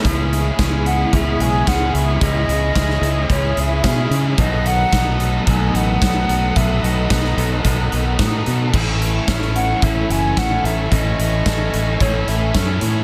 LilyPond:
<<
  \new Staff \with { instrumentName = "String machine" } { \time 4/4 \key cis \minor \tempo 4 = 110 <e' gis' b'' cis'''>1~ | <e' gis' b'' cis'''>1 | <a' fis'' b'' dis'''>1~ | <a' fis'' b'' dis'''>1 |
<a' gis'' cis'''>1~ | <a' gis'' cis'''>1 | }
  \new Staff \with { instrumentName = "Flute" } { \time 4/4 \key cis \minor r4. fis''8 e''8 gis''8 fis''8 e''8 | dis''2 cis''8 e''4 r8 | dis''8 fis''4 r8 gis''8 fis''4. | e''8 dis''2 r4. |
r4. fis''8 e''8 gis''8 fis''8 e''8 | dis''2 cis''8 e''4 r8 | }
  \new Staff \with { instrumentName = "Overdriven electric guitar" } { \time 4/4 \key cis \minor <cis gis cis' e' gis'>4 <gis cis' e' gis'>4 <cis gis cis' e' gis'>4 <gis cis' e' gis'>4 | <cis gis cis' e' gis'>4 <gis cis' e' gis'>4 <cis gis cis' e' gis'>4 <gis cis' e' gis'>4 | <b, dis fis b dis' a'>4 <fis b dis' a'>4 <b, dis fis b dis' a'>4 <fis b dis' a'>4 | <b, dis fis b dis' a'>4 <fis b dis' a'>4 <b, dis fis b dis' a'>4 <fis b dis' a'>4 |
<a, e a cis' e' a'>4 <a cis' e' a'>4 <a, e a cis' e' a'>4 <a cis' e' a'>4 | <a, e a cis' e' a'>4 <a cis' e' a'>4 <a, e a cis' e' a'>4 <a cis' e' a'>4 | }
  \new Staff \with { instrumentName = "Clean electric guitar" } { \time 4/4 \key cis \minor <cis gis b e' gis'>1~ | <cis gis b e' gis'>1 | <b, fis a dis' fis'>1~ | <b, fis a dis' fis'>1 |
<a, e cis' e'>1~ | <a, e cis' e'>1 | }
  \new Staff \with { instrumentName = "Fingered electric bass" } { \clef bass \time 4/4 \key cis \minor cis,4 cis,4 cis,8 b,,8 cis,8 cis,8 | cis,8 cis,8 cis,8 cis,8 cis,8 cis,8 b,8 cis8 | b,,4 b,,4 b,,8 a,,8 b,,8 b,,8 | b,,8 b,,8 b,,8 b,,8 b,,8 b,,8 a,8 b,8 |
a,,4 a,,4 a,,8 fis,,8 a,,8 a,,8 | a,,8 a,,8 a,,8 a,,8 a,,8 a,,8 fis,8 a,8 | }
  \new DrumStaff \with { instrumentName = "Drums" } \drummode { \time 4/4 <hh bd>8 hh8 <hh bd sn>8 hh8 <hh bd>8 hh8 <hh bd sn>8 hh8 | <hh bd>8 hh8 <hh bd sn>16 sn16 hh8 <hh bd>8 hh8 <hh bd sn>8 hh8 | <hh bd>8 hh8 <hh bd sn>8 hh8 <hh bd>8 hh8 <hh bd sn>8 hh8 | <hh bd>8 hh8 <hh bd sn>16 sn16 hh8 <hh bd>8 hh8 <hh bd sn>8 hh8 |
<cymc bd>8 hh8 <hh bd sn>16 sn16 hh8 <hh bd>8 hh8 <hh bd sn>8 hh8 | <hh bd>8 hh8 <hh bd sn>8 hh8 <hh bd>8 hh8 <hh bd sn>8 hh8 | }
>>